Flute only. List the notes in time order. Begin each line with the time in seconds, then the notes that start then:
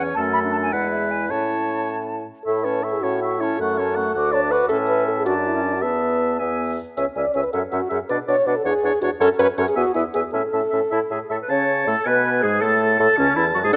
0.15 A5
0.33 B5
0.52 A5
0.63 G#5
0.72 F#5
0.91 E5
1.11 G#5
1.29 A5
2.46 C#6
2.65 A5
2.84 C#6
3.04 A5
3.23 C#6
3.43 A5
3.63 C#6
3.80 A5
3.98 C#6
4.16 D6
4.34 A5
4.53 D6
4.72 A5
5.27 A5
5.83 A5
6.39 G#5
6.97 G#5
7.15 G#5
7.35 G#5
7.53 F#5
7.71 F#5
7.92 F#5
8.11 F#5
8.30 F#5
8.47 F#5
8.64 F#5
8.83 F#5
9.02 F#5
9.20 F#5
9.39 F#5
9.59 F#5
9.75 G#5
9.93 G#5
10.14 G#5
10.33 A5
10.53 A5
10.73 A5
10.92 A5
11.11 A5
11.31 A5
11.49 C#5
11.87 A4
12.04 B4
12.41 G#4
12.61 A4
12.99 A4
13.18 C#4
13.36 E4
13.54 F#4
13.63 G#4
13.73 F#5